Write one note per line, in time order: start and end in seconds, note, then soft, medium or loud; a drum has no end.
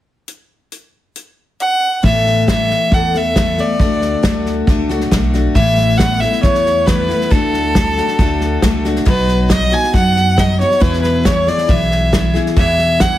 0.28 closed hi-hat medium
0.72 closed hi-hat soft
1.16 closed hi-hat medium
1.60 2.01 F#5 medium
1.60 closed hi-hat soft
2.03 2.70 A1 medium
2.03 2.47 A2 medium
2.03 2.47 E3 medium
2.03 2.48 A3 medium
2.03 2.48 B3 medium
2.03 2.50 A4 medium
2.03 2.45 E5 medium
2.03 kick medium
2.03 snare soft
2.26 snare soft
2.48 2.91 E3 medium
2.48 2.93 A3 medium
2.48 2.93 B3 medium
2.48 2.95 A4 medium
2.48 2.95 E5 medium
2.48 kick medium
2.48 snare medium
2.48 hi-hat pedal medium
2.70 snare soft
2.91 3.58 E2 medium
2.91 3.14 E3 medium
2.91 3.14 A3 medium
2.91 3.14 B3 medium
2.91 3.13 A4 medium
2.91 3.19 F#5 medium
2.91 kick loud
2.91 snare soft
3.14 3.36 A3 soft
3.14 3.36 B3 soft
3.14 3.36 A4 soft
3.14 3.62 E5 medium
3.14 snare soft
3.36 3.58 E3 medium
3.36 3.58 A3 medium
3.36 3.58 B3 medium
3.36 3.57 A4 medium
3.36 kick medium
3.36 snare medium
3.36 hi-hat pedal medium
3.58 3.80 A3 soft
3.58 3.80 B3 soft
3.58 3.80 A4 soft
3.58 4.47 D5 medium
3.58 snare soft
3.80 4.13 D2 medium
3.80 4.21 D3 medium
3.80 4.22 A3 medium
3.80 4.23 D4 medium
3.80 4.24 F#4 medium
3.80 kick loud
3.80 snare soft
4.02 snare soft
4.23 4.61 D2 medium
4.23 4.67 D3 medium
4.23 4.67 A3 medium
4.23 4.68 D4 medium
4.23 4.68 F#4 medium
4.23 kick medium
4.23 snare loud
4.23 hi-hat pedal medium
4.46 snare soft
4.67 5.04 C#2 medium
4.67 4.90 D3 medium
4.67 4.90 A3 medium
4.67 4.90 D4 medium
4.67 4.88 F#4 medium
4.67 kick loud
4.67 snare soft
4.89 5.12 A3 soft
4.89 5.12 D4 soft
4.89 5.11 F#4 medium
4.89 snare soft
5.01 snare soft
5.11 5.48 B1 medium
5.11 5.33 D3 medium
5.11 5.34 A3 medium
5.11 5.34 D4 medium
5.11 5.32 F#4 medium
5.11 kick medium
5.11 snare medium
5.11 hi-hat pedal medium
5.34 5.55 A3 soft
5.34 5.56 D4 medium
5.34 5.55 F#4 medium
5.34 snare soft
5.55 6.22 A1 medium
5.55 5.99 A2 medium
5.55 5.98 E3 medium
5.55 6.00 A3 medium
5.55 6.00 B3 medium
5.55 6.00 E4 medium
5.55 5.99 E5 loud
5.55 kick medium
5.55 snare soft
5.77 snare soft
5.97 6.21 E3 medium
5.97 6.22 A3 medium
5.97 6.22 B3 medium
5.97 6.21 E4 medium
5.97 6.22 F#5 loud
5.97 kick medium
5.97 snare loud
5.97 hi-hat pedal medium
6.20 6.42 B3 soft
6.20 6.43 E4 soft
6.20 6.43 E5 medium
6.20 snare soft
6.24 6.42 A3 soft
6.32 snare soft
6.42 7.10 E2 medium
6.42 6.85 E3 medium
6.42 6.86 A3 medium
6.42 6.87 B3 medium
6.42 6.88 E4 medium
6.42 6.87 C#5 medium
6.42 kick loud
6.42 snare soft
6.55 snare soft
6.66 snare soft
6.86 7.09 E3 medium
6.86 7.09 A3 medium
6.86 7.09 B3 medium
6.86 7.07 E4 medium
6.86 7.32 B4 medium
6.86 kick medium
6.86 snare medium
6.86 hi-hat pedal medium
7.09 7.30 A3 soft
7.09 7.31 B3 soft
7.09 7.31 E4 soft
7.09 snare soft
7.21 snare soft
7.30 7.98 D2 medium
7.30 7.74 D3 medium
7.30 7.75 A3 medium
7.30 7.75 D4 medium
7.30 7.77 F#4 medium
7.30 8.84 A4 medium
7.30 kick loud
7.30 snare soft
7.53 snare soft
7.75 7.97 D3 medium
7.75 7.97 A3 medium
7.75 7.97 D4 medium
7.75 7.96 F#4 medium
7.75 kick medium
7.75 snare loud
7.75 hi-hat pedal medium
7.97 8.18 A3 soft
7.97 8.19 D4 soft
7.97 8.19 F#4 medium
7.97 snare soft
8.08 snare soft
8.19 8.56 D2 medium
8.19 8.62 D3 medium
8.19 8.62 A3 medium
8.19 8.63 D4 medium
8.19 8.64 F#4 medium
8.19 kick loud
8.19 snare soft
8.41 snare soft
8.62 9.00 C#2 medium
8.62 8.84 D3 medium
8.62 8.85 A3 medium
8.62 8.85 D4 medium
8.62 8.84 F#4 medium
8.62 kick medium
8.62 snare medium
8.62 hi-hat pedal medium
8.85 9.05 A3 soft
8.85 9.06 D4 medium
8.85 9.05 F#4 medium
8.85 snare soft
8.96 snare soft
9.05 9.73 B1 medium
9.05 9.50 B2 medium
9.05 9.48 F#3 medium
9.05 9.49 B3 medium
9.05 9.49 D#4 medium
9.05 9.50 F#4 medium
9.05 9.48 B4 medium
9.05 kick loud
9.05 snare soft
9.28 snare soft
9.49 9.71 F#3 medium
9.49 9.72 B3 medium
9.49 9.72 D#4 medium
9.49 9.71 F#4 medium
9.49 9.75 D#5 medium
9.49 kick medium
9.49 snare loud
9.49 hi-hat pedal medium
9.72 9.92 B3 soft
9.72 9.93 D#4 soft
9.72 9.93 F#4 medium
9.72 9.94 G#5 medium
9.72 snare soft
9.83 snare soft
9.92 10.61 F#2 medium
9.92 10.35 F#3 medium
9.92 10.37 B3 medium
9.92 10.37 D#4 medium
9.92 10.38 F#4 medium
9.92 10.41 F#5 loud
9.92 kick loud
9.92 snare soft
10.16 snare soft
10.37 10.59 F#3 medium
10.37 10.59 B3 medium
10.37 10.59 D#4 medium
10.37 10.58 F#4 medium
10.37 10.60 D#5 medium
10.37 kick medium
10.37 snare loud
10.37 hi-hat pedal medium
10.59 10.80 B3 soft
10.59 10.81 D#4 soft
10.59 10.81 F#4 soft
10.59 10.83 C#5 medium
10.59 snare soft
10.71 snare soft
10.80 11.25 E2 medium
10.80 11.48 E2 medium
10.80 11.25 B2 medium
10.80 11.22 E3 medium
10.80 11.25 B3 medium
10.80 11.24 E4 medium
10.80 11.25 G#4 medium
10.80 11.01 B4 medium
10.80 kick loud
10.80 snare soft
10.93 snare soft
11.02 11.27 B4 medium
11.02 snare soft
11.24 11.46 E3 medium
11.24 11.47 B3 medium
11.24 11.46 E4 medium
11.24 11.45 G#4 medium
11.24 11.50 C#5 medium
11.24 kick medium
11.24 snare loud
11.24 hi-hat pedal medium
11.47 11.67 E3 soft
11.47 11.68 B3 soft
11.47 11.68 E4 soft
11.47 11.69 G#4 soft
11.47 11.72 D5 medium
11.47 snare soft
11.58 snare soft
11.68 12.36 B1 medium
11.68 12.11 E3 medium
11.68 12.13 B3 medium
11.68 12.13 E4 medium
11.68 12.13 G#4 medium
11.68 12.35 E5 medium
11.68 kick loud
11.68 snare soft
11.91 snare soft
12.12 12.35 E3 medium
12.12 12.34 B3 medium
12.12 12.34 E4 medium
12.12 12.32 G#4 medium
12.12 kick medium
12.12 snare medium
12.12 hi-hat pedal medium
12.34 12.56 E3 soft
12.34 12.56 B3 soft
12.34 12.56 E4 medium
12.34 12.56 G#4 medium
12.34 snare soft
12.46 snare soft
12.56 13.18 E2 medium
12.56 13.01 E2 medium
12.56 13.00 B2 medium
12.56 12.99 E3 medium
12.56 13.01 B3 medium
12.56 13.01 E4 medium
12.56 13.01 G#4 medium
12.56 13.02 E5 loud
12.56 kick loud
12.56 snare soft
12.78 snare soft
13.00 13.18 E3 medium
13.00 13.18 B3 medium
13.00 13.18 E4 medium
13.00 13.18 G#4 medium
13.00 13.18 F#5 loud
13.00 kick medium
13.00 snare loud
13.00 hi-hat pedal medium